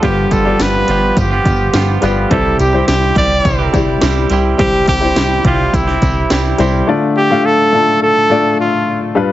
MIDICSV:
0, 0, Header, 1, 6, 480
1, 0, Start_track
1, 0, Key_signature, -1, "minor"
1, 0, Tempo, 570885
1, 24, Time_signature, 4, 2, 24, 8
1, 7839, End_track
2, 0, Start_track
2, 0, Title_t, "Trumpet"
2, 0, Program_c, 0, 56
2, 30, Note_on_c, 0, 67, 89
2, 272, Note_on_c, 0, 69, 81
2, 284, Note_off_c, 0, 67, 0
2, 521, Note_on_c, 0, 71, 97
2, 534, Note_off_c, 0, 69, 0
2, 993, Note_off_c, 0, 71, 0
2, 1007, Note_on_c, 0, 67, 78
2, 1682, Note_off_c, 0, 67, 0
2, 1949, Note_on_c, 0, 69, 82
2, 2170, Note_off_c, 0, 69, 0
2, 2187, Note_on_c, 0, 67, 73
2, 2409, Note_off_c, 0, 67, 0
2, 2421, Note_on_c, 0, 67, 82
2, 2645, Note_off_c, 0, 67, 0
2, 2672, Note_on_c, 0, 74, 94
2, 3115, Note_off_c, 0, 74, 0
2, 3864, Note_on_c, 0, 67, 104
2, 4087, Note_off_c, 0, 67, 0
2, 4109, Note_on_c, 0, 67, 104
2, 4553, Note_off_c, 0, 67, 0
2, 4595, Note_on_c, 0, 65, 86
2, 4837, Note_on_c, 0, 64, 83
2, 4849, Note_off_c, 0, 65, 0
2, 5550, Note_off_c, 0, 64, 0
2, 6029, Note_on_c, 0, 67, 97
2, 6272, Note_on_c, 0, 69, 111
2, 6284, Note_off_c, 0, 67, 0
2, 6745, Note_off_c, 0, 69, 0
2, 6750, Note_on_c, 0, 69, 106
2, 7193, Note_off_c, 0, 69, 0
2, 7236, Note_on_c, 0, 65, 73
2, 7564, Note_off_c, 0, 65, 0
2, 7839, End_track
3, 0, Start_track
3, 0, Title_t, "Grand piano"
3, 0, Program_c, 1, 0
3, 0, Control_c, 1, 64, 127
3, 18, Note_on_c, 1, 55, 63
3, 24, Note_on_c, 1, 43, 54
3, 25, Note_on_c, 1, 65, 55
3, 30, Note_on_c, 1, 71, 67
3, 34, Control_c, 1, 64, 0
3, 165, Control_c, 1, 64, 127
3, 290, Note_off_c, 1, 55, 0
3, 294, Note_off_c, 1, 65, 0
3, 296, Note_off_c, 1, 71, 0
3, 374, Note_on_c, 1, 55, 67
3, 381, Note_on_c, 1, 65, 57
3, 388, Note_on_c, 1, 74, 73
3, 710, Note_off_c, 1, 43, 0
3, 1097, Note_off_c, 1, 55, 0
3, 1101, Note_off_c, 1, 65, 0
3, 1104, Note_off_c, 1, 74, 0
3, 1694, Note_on_c, 1, 55, 74
3, 1703, Note_on_c, 1, 65, 69
3, 1707, Note_on_c, 1, 71, 82
3, 1879, Note_off_c, 1, 55, 0
3, 1883, Note_off_c, 1, 65, 0
3, 1885, Note_off_c, 1, 71, 0
3, 1934, Note_on_c, 1, 55, 61
3, 1940, Note_on_c, 1, 64, 57
3, 1942, Note_on_c, 1, 48, 54
3, 1948, Note_on_c, 1, 72, 73
3, 1955, Control_c, 1, 64, 0
3, 2102, Control_c, 1, 64, 127
3, 2208, Note_off_c, 1, 55, 0
3, 2212, Note_off_c, 1, 64, 0
3, 2215, Note_off_c, 1, 72, 0
3, 2296, Note_on_c, 1, 55, 69
3, 2303, Note_on_c, 1, 64, 58
3, 2309, Note_on_c, 1, 72, 74
3, 2629, Note_off_c, 1, 48, 0
3, 2929, Note_off_c, 1, 55, 0
3, 2932, Note_off_c, 1, 64, 0
3, 2935, Note_off_c, 1, 72, 0
3, 3134, Note_on_c, 1, 55, 70
3, 3141, Note_on_c, 1, 64, 65
3, 3149, Note_on_c, 1, 67, 80
3, 3678, Note_off_c, 1, 55, 0
3, 3682, Note_off_c, 1, 64, 0
3, 3685, Note_off_c, 1, 67, 0
3, 3849, Note_on_c, 1, 55, 67
3, 3857, Note_on_c, 1, 48, 56
3, 3858, Note_on_c, 1, 64, 58
3, 3864, Note_on_c, 1, 72, 65
3, 4126, Note_off_c, 1, 55, 0
3, 4131, Note_off_c, 1, 64, 0
3, 4133, Note_off_c, 1, 72, 0
3, 4207, Note_on_c, 1, 55, 68
3, 4215, Note_on_c, 1, 64, 62
3, 4222, Note_on_c, 1, 72, 73
3, 4547, Note_off_c, 1, 48, 0
3, 4934, Note_off_c, 1, 55, 0
3, 4938, Note_off_c, 1, 64, 0
3, 4941, Note_off_c, 1, 72, 0
3, 5534, Note_on_c, 1, 55, 81
3, 5541, Note_on_c, 1, 64, 70
3, 5547, Note_on_c, 1, 72, 87
3, 5718, Note_off_c, 1, 55, 0
3, 5722, Note_off_c, 1, 64, 0
3, 5725, Note_off_c, 1, 72, 0
3, 5777, Note_on_c, 1, 57, 81
3, 5782, Note_on_c, 1, 62, 74
3, 5783, Note_on_c, 1, 50, 69
3, 5787, Note_on_c, 1, 65, 76
3, 5791, Note_on_c, 1, 74, 87
3, 5793, Control_c, 1, 64, 0
3, 5920, Control_c, 1, 64, 127
3, 6049, Note_off_c, 1, 57, 0
3, 6052, Note_off_c, 1, 62, 0
3, 6054, Note_off_c, 1, 65, 0
3, 6057, Note_off_c, 1, 74, 0
3, 6140, Note_on_c, 1, 57, 72
3, 6145, Note_on_c, 1, 62, 63
3, 6148, Note_on_c, 1, 65, 66
3, 6153, Note_on_c, 1, 77, 78
3, 6411, Note_off_c, 1, 57, 0
3, 6413, Note_off_c, 1, 62, 0
3, 6415, Note_off_c, 1, 65, 0
3, 6418, Note_off_c, 1, 77, 0
3, 6469, Note_off_c, 1, 50, 0
3, 6495, Note_on_c, 1, 57, 72
3, 6500, Note_on_c, 1, 62, 65
3, 6506, Note_on_c, 1, 65, 67
3, 6509, Note_on_c, 1, 69, 76
3, 6858, Note_off_c, 1, 57, 0
3, 6860, Note_off_c, 1, 62, 0
3, 6863, Note_off_c, 1, 65, 0
3, 6865, Note_off_c, 1, 69, 0
3, 6977, Note_on_c, 1, 57, 78
3, 6983, Note_on_c, 1, 62, 72
3, 6987, Note_on_c, 1, 65, 69
3, 6992, Note_on_c, 1, 74, 84
3, 7518, Note_off_c, 1, 57, 0
3, 7521, Note_off_c, 1, 62, 0
3, 7523, Note_off_c, 1, 65, 0
3, 7525, Note_off_c, 1, 74, 0
3, 7694, Note_on_c, 1, 55, 83
3, 7698, Note_on_c, 1, 62, 79
3, 7701, Note_on_c, 1, 43, 75
3, 7703, Note_on_c, 1, 65, 76
3, 7707, Note_on_c, 1, 71, 91
3, 7711, Control_c, 1, 64, 0
3, 7839, Note_off_c, 1, 43, 0
3, 7839, Note_off_c, 1, 55, 0
3, 7839, Note_off_c, 1, 62, 0
3, 7839, Note_off_c, 1, 65, 0
3, 7839, Note_off_c, 1, 71, 0
3, 7839, End_track
4, 0, Start_track
4, 0, Title_t, "Clean electric guitar"
4, 0, Program_c, 2, 27
4, 22, Note_on_c, 2, 43, 73
4, 25, Note_on_c, 2, 50, 77
4, 29, Note_on_c, 2, 53, 76
4, 35, Note_on_c, 2, 59, 77
4, 38, Note_on_c, 2, 65, 85
4, 40, Note_on_c, 2, 67, 80
4, 367, Note_off_c, 2, 67, 0
4, 377, Note_on_c, 2, 67, 54
4, 378, Note_off_c, 2, 65, 0
4, 383, Note_off_c, 2, 43, 0
4, 385, Note_off_c, 2, 50, 0
4, 386, Note_off_c, 2, 53, 0
4, 386, Note_off_c, 2, 59, 0
4, 388, Note_on_c, 2, 65, 50
4, 396, Note_on_c, 2, 59, 44
4, 405, Note_on_c, 2, 53, 43
4, 727, Note_off_c, 2, 53, 0
4, 737, Note_off_c, 2, 59, 0
4, 737, Note_on_c, 2, 53, 57
4, 741, Note_off_c, 2, 67, 0
4, 746, Note_off_c, 2, 65, 0
4, 747, Note_on_c, 2, 59, 61
4, 756, Note_on_c, 2, 65, 63
4, 765, Note_on_c, 2, 67, 63
4, 1088, Note_off_c, 2, 67, 0
4, 1098, Note_off_c, 2, 65, 0
4, 1098, Note_on_c, 2, 67, 58
4, 1101, Note_off_c, 2, 53, 0
4, 1105, Note_off_c, 2, 59, 0
4, 1108, Note_on_c, 2, 65, 47
4, 1117, Note_on_c, 2, 59, 44
4, 1127, Note_on_c, 2, 53, 43
4, 1449, Note_off_c, 2, 53, 0
4, 1459, Note_off_c, 2, 59, 0
4, 1459, Note_on_c, 2, 53, 61
4, 1461, Note_off_c, 2, 67, 0
4, 1466, Note_off_c, 2, 65, 0
4, 1469, Note_on_c, 2, 59, 62
4, 1477, Note_on_c, 2, 65, 60
4, 1486, Note_on_c, 2, 67, 62
4, 1689, Note_off_c, 2, 53, 0
4, 1699, Note_on_c, 2, 53, 56
4, 1700, Note_off_c, 2, 59, 0
4, 1710, Note_on_c, 2, 59, 65
4, 1711, Note_off_c, 2, 65, 0
4, 1715, Note_off_c, 2, 67, 0
4, 1720, Note_on_c, 2, 65, 60
4, 1726, Note_on_c, 2, 67, 67
4, 1939, Note_on_c, 2, 48, 77
4, 1941, Note_off_c, 2, 53, 0
4, 1944, Note_off_c, 2, 59, 0
4, 1945, Note_on_c, 2, 55, 86
4, 1948, Note_on_c, 2, 60, 80
4, 1949, Note_off_c, 2, 67, 0
4, 1951, Note_off_c, 2, 65, 0
4, 1954, Note_on_c, 2, 64, 83
4, 1959, Note_on_c, 2, 67, 81
4, 2285, Note_off_c, 2, 67, 0
4, 2295, Note_on_c, 2, 67, 54
4, 2300, Note_off_c, 2, 64, 0
4, 2301, Note_off_c, 2, 48, 0
4, 2304, Note_off_c, 2, 55, 0
4, 2306, Note_off_c, 2, 60, 0
4, 2310, Note_on_c, 2, 64, 46
4, 2323, Note_on_c, 2, 60, 44
4, 2658, Note_on_c, 2, 55, 59
4, 2659, Note_off_c, 2, 67, 0
4, 2660, Note_off_c, 2, 60, 0
4, 2667, Note_off_c, 2, 64, 0
4, 2670, Note_on_c, 2, 60, 59
4, 2678, Note_on_c, 2, 64, 61
4, 2687, Note_on_c, 2, 67, 64
4, 3005, Note_off_c, 2, 67, 0
4, 3015, Note_on_c, 2, 67, 53
4, 3020, Note_off_c, 2, 64, 0
4, 3021, Note_off_c, 2, 55, 0
4, 3027, Note_off_c, 2, 60, 0
4, 3030, Note_on_c, 2, 64, 51
4, 3043, Note_on_c, 2, 60, 42
4, 3376, Note_on_c, 2, 55, 63
4, 3377, Note_off_c, 2, 60, 0
4, 3380, Note_off_c, 2, 67, 0
4, 3387, Note_off_c, 2, 64, 0
4, 3387, Note_on_c, 2, 60, 60
4, 3396, Note_on_c, 2, 64, 64
4, 3402, Note_on_c, 2, 67, 66
4, 3607, Note_off_c, 2, 55, 0
4, 3617, Note_on_c, 2, 55, 60
4, 3618, Note_off_c, 2, 60, 0
4, 3628, Note_off_c, 2, 64, 0
4, 3628, Note_on_c, 2, 60, 58
4, 3633, Note_off_c, 2, 67, 0
4, 3638, Note_on_c, 2, 64, 62
4, 3645, Note_on_c, 2, 67, 64
4, 3849, Note_off_c, 2, 55, 0
4, 3855, Note_off_c, 2, 60, 0
4, 3855, Note_on_c, 2, 48, 77
4, 3858, Note_off_c, 2, 64, 0
4, 3859, Note_on_c, 2, 55, 83
4, 3865, Note_off_c, 2, 67, 0
4, 3866, Note_on_c, 2, 60, 82
4, 3868, Note_on_c, 2, 64, 81
4, 3875, Note_on_c, 2, 67, 94
4, 4206, Note_off_c, 2, 67, 0
4, 4216, Note_on_c, 2, 67, 54
4, 4220, Note_off_c, 2, 48, 0
4, 4222, Note_off_c, 2, 55, 0
4, 4222, Note_off_c, 2, 64, 0
4, 4225, Note_off_c, 2, 60, 0
4, 4232, Note_on_c, 2, 64, 48
4, 4243, Note_on_c, 2, 60, 47
4, 4578, Note_on_c, 2, 55, 56
4, 4580, Note_off_c, 2, 60, 0
4, 4580, Note_off_c, 2, 67, 0
4, 4588, Note_off_c, 2, 64, 0
4, 4590, Note_on_c, 2, 60, 62
4, 4598, Note_on_c, 2, 64, 66
4, 4605, Note_on_c, 2, 67, 59
4, 4928, Note_off_c, 2, 67, 0
4, 4939, Note_on_c, 2, 67, 56
4, 4941, Note_off_c, 2, 55, 0
4, 4945, Note_off_c, 2, 64, 0
4, 4947, Note_off_c, 2, 60, 0
4, 4956, Note_on_c, 2, 64, 49
4, 4965, Note_on_c, 2, 60, 42
4, 5300, Note_off_c, 2, 60, 0
4, 5301, Note_off_c, 2, 67, 0
4, 5301, Note_on_c, 2, 55, 61
4, 5310, Note_off_c, 2, 64, 0
4, 5310, Note_on_c, 2, 60, 59
4, 5318, Note_on_c, 2, 64, 65
4, 5327, Note_on_c, 2, 67, 72
4, 5528, Note_off_c, 2, 55, 0
4, 5538, Note_off_c, 2, 60, 0
4, 5538, Note_on_c, 2, 55, 63
4, 5546, Note_off_c, 2, 64, 0
4, 5548, Note_on_c, 2, 60, 56
4, 5555, Note_off_c, 2, 67, 0
4, 5556, Note_on_c, 2, 64, 65
4, 5564, Note_on_c, 2, 67, 59
4, 5781, Note_off_c, 2, 55, 0
4, 5786, Note_off_c, 2, 60, 0
4, 5790, Note_off_c, 2, 64, 0
4, 5794, Note_off_c, 2, 67, 0
4, 7839, End_track
5, 0, Start_track
5, 0, Title_t, "Analog synth bass"
5, 0, Program_c, 3, 38
5, 23, Note_on_c, 3, 31, 94
5, 220, Note_off_c, 3, 31, 0
5, 264, Note_on_c, 3, 31, 97
5, 461, Note_off_c, 3, 31, 0
5, 507, Note_on_c, 3, 31, 83
5, 703, Note_off_c, 3, 31, 0
5, 744, Note_on_c, 3, 31, 96
5, 941, Note_off_c, 3, 31, 0
5, 983, Note_on_c, 3, 31, 94
5, 1180, Note_off_c, 3, 31, 0
5, 1222, Note_on_c, 3, 31, 96
5, 1419, Note_off_c, 3, 31, 0
5, 1463, Note_on_c, 3, 31, 100
5, 1661, Note_off_c, 3, 31, 0
5, 1705, Note_on_c, 3, 31, 90
5, 1901, Note_off_c, 3, 31, 0
5, 1943, Note_on_c, 3, 36, 88
5, 2140, Note_off_c, 3, 36, 0
5, 2186, Note_on_c, 3, 36, 91
5, 2382, Note_off_c, 3, 36, 0
5, 2424, Note_on_c, 3, 36, 91
5, 2621, Note_off_c, 3, 36, 0
5, 2657, Note_on_c, 3, 36, 96
5, 2857, Note_off_c, 3, 36, 0
5, 2900, Note_on_c, 3, 36, 97
5, 3099, Note_off_c, 3, 36, 0
5, 3140, Note_on_c, 3, 36, 92
5, 3339, Note_off_c, 3, 36, 0
5, 3384, Note_on_c, 3, 36, 100
5, 3581, Note_off_c, 3, 36, 0
5, 3620, Note_on_c, 3, 36, 99
5, 3818, Note_off_c, 3, 36, 0
5, 3859, Note_on_c, 3, 36, 99
5, 4058, Note_off_c, 3, 36, 0
5, 4102, Note_on_c, 3, 36, 101
5, 4299, Note_off_c, 3, 36, 0
5, 4342, Note_on_c, 3, 36, 96
5, 4540, Note_off_c, 3, 36, 0
5, 4580, Note_on_c, 3, 36, 99
5, 4778, Note_off_c, 3, 36, 0
5, 4821, Note_on_c, 3, 36, 92
5, 5019, Note_off_c, 3, 36, 0
5, 5062, Note_on_c, 3, 36, 105
5, 5260, Note_off_c, 3, 36, 0
5, 5306, Note_on_c, 3, 36, 99
5, 5502, Note_off_c, 3, 36, 0
5, 5543, Note_on_c, 3, 36, 96
5, 5740, Note_off_c, 3, 36, 0
5, 7839, End_track
6, 0, Start_track
6, 0, Title_t, "Drums"
6, 23, Note_on_c, 9, 36, 107
6, 24, Note_on_c, 9, 42, 79
6, 26, Note_on_c, 9, 54, 27
6, 107, Note_off_c, 9, 36, 0
6, 108, Note_off_c, 9, 42, 0
6, 110, Note_off_c, 9, 54, 0
6, 262, Note_on_c, 9, 42, 63
6, 265, Note_on_c, 9, 36, 80
6, 267, Note_on_c, 9, 54, 47
6, 346, Note_off_c, 9, 42, 0
6, 349, Note_off_c, 9, 36, 0
6, 351, Note_off_c, 9, 54, 0
6, 501, Note_on_c, 9, 38, 100
6, 501, Note_on_c, 9, 42, 73
6, 507, Note_on_c, 9, 54, 70
6, 585, Note_off_c, 9, 38, 0
6, 585, Note_off_c, 9, 42, 0
6, 591, Note_off_c, 9, 54, 0
6, 739, Note_on_c, 9, 42, 67
6, 753, Note_on_c, 9, 54, 30
6, 823, Note_off_c, 9, 42, 0
6, 837, Note_off_c, 9, 54, 0
6, 982, Note_on_c, 9, 36, 83
6, 982, Note_on_c, 9, 42, 85
6, 985, Note_on_c, 9, 54, 46
6, 1066, Note_off_c, 9, 36, 0
6, 1066, Note_off_c, 9, 42, 0
6, 1069, Note_off_c, 9, 54, 0
6, 1223, Note_on_c, 9, 36, 76
6, 1223, Note_on_c, 9, 42, 61
6, 1230, Note_on_c, 9, 54, 43
6, 1307, Note_off_c, 9, 36, 0
6, 1307, Note_off_c, 9, 42, 0
6, 1314, Note_off_c, 9, 54, 0
6, 1459, Note_on_c, 9, 38, 98
6, 1459, Note_on_c, 9, 42, 72
6, 1465, Note_on_c, 9, 54, 79
6, 1543, Note_off_c, 9, 38, 0
6, 1543, Note_off_c, 9, 42, 0
6, 1549, Note_off_c, 9, 54, 0
6, 1697, Note_on_c, 9, 42, 60
6, 1707, Note_on_c, 9, 54, 45
6, 1781, Note_off_c, 9, 42, 0
6, 1791, Note_off_c, 9, 54, 0
6, 1942, Note_on_c, 9, 36, 99
6, 1942, Note_on_c, 9, 42, 76
6, 2026, Note_off_c, 9, 36, 0
6, 2026, Note_off_c, 9, 42, 0
6, 2181, Note_on_c, 9, 42, 65
6, 2182, Note_on_c, 9, 54, 51
6, 2265, Note_off_c, 9, 42, 0
6, 2266, Note_off_c, 9, 54, 0
6, 2421, Note_on_c, 9, 38, 95
6, 2421, Note_on_c, 9, 42, 73
6, 2425, Note_on_c, 9, 54, 71
6, 2505, Note_off_c, 9, 38, 0
6, 2505, Note_off_c, 9, 42, 0
6, 2509, Note_off_c, 9, 54, 0
6, 2658, Note_on_c, 9, 36, 74
6, 2658, Note_on_c, 9, 42, 64
6, 2669, Note_on_c, 9, 54, 32
6, 2742, Note_off_c, 9, 36, 0
6, 2742, Note_off_c, 9, 42, 0
6, 2753, Note_off_c, 9, 54, 0
6, 2900, Note_on_c, 9, 36, 88
6, 2901, Note_on_c, 9, 42, 87
6, 2904, Note_on_c, 9, 54, 48
6, 2985, Note_off_c, 9, 36, 0
6, 2985, Note_off_c, 9, 42, 0
6, 2988, Note_off_c, 9, 54, 0
6, 3142, Note_on_c, 9, 36, 76
6, 3142, Note_on_c, 9, 42, 60
6, 3148, Note_on_c, 9, 54, 43
6, 3226, Note_off_c, 9, 36, 0
6, 3226, Note_off_c, 9, 42, 0
6, 3232, Note_off_c, 9, 54, 0
6, 3375, Note_on_c, 9, 42, 76
6, 3376, Note_on_c, 9, 38, 101
6, 3387, Note_on_c, 9, 54, 88
6, 3459, Note_off_c, 9, 42, 0
6, 3460, Note_off_c, 9, 38, 0
6, 3471, Note_off_c, 9, 54, 0
6, 3612, Note_on_c, 9, 42, 65
6, 3628, Note_on_c, 9, 54, 48
6, 3696, Note_off_c, 9, 42, 0
6, 3712, Note_off_c, 9, 54, 0
6, 3861, Note_on_c, 9, 36, 107
6, 3861, Note_on_c, 9, 42, 83
6, 3945, Note_off_c, 9, 36, 0
6, 3945, Note_off_c, 9, 42, 0
6, 4099, Note_on_c, 9, 42, 61
6, 4102, Note_on_c, 9, 54, 47
6, 4103, Note_on_c, 9, 36, 76
6, 4183, Note_off_c, 9, 42, 0
6, 4186, Note_off_c, 9, 54, 0
6, 4187, Note_off_c, 9, 36, 0
6, 4341, Note_on_c, 9, 38, 105
6, 4342, Note_on_c, 9, 42, 76
6, 4347, Note_on_c, 9, 54, 66
6, 4425, Note_off_c, 9, 38, 0
6, 4426, Note_off_c, 9, 42, 0
6, 4431, Note_off_c, 9, 54, 0
6, 4579, Note_on_c, 9, 42, 69
6, 4580, Note_on_c, 9, 36, 75
6, 4663, Note_off_c, 9, 42, 0
6, 4664, Note_off_c, 9, 36, 0
6, 4823, Note_on_c, 9, 36, 84
6, 4823, Note_on_c, 9, 54, 49
6, 4826, Note_on_c, 9, 42, 85
6, 4907, Note_off_c, 9, 36, 0
6, 4907, Note_off_c, 9, 54, 0
6, 4910, Note_off_c, 9, 42, 0
6, 4940, Note_on_c, 9, 38, 34
6, 5024, Note_off_c, 9, 38, 0
6, 5061, Note_on_c, 9, 42, 63
6, 5063, Note_on_c, 9, 36, 76
6, 5069, Note_on_c, 9, 54, 45
6, 5145, Note_off_c, 9, 42, 0
6, 5147, Note_off_c, 9, 36, 0
6, 5153, Note_off_c, 9, 54, 0
6, 5299, Note_on_c, 9, 38, 99
6, 5299, Note_on_c, 9, 42, 75
6, 5308, Note_on_c, 9, 54, 88
6, 5383, Note_off_c, 9, 42, 0
6, 5384, Note_off_c, 9, 38, 0
6, 5392, Note_off_c, 9, 54, 0
6, 5536, Note_on_c, 9, 42, 65
6, 5550, Note_on_c, 9, 54, 48
6, 5620, Note_off_c, 9, 42, 0
6, 5634, Note_off_c, 9, 54, 0
6, 7839, End_track
0, 0, End_of_file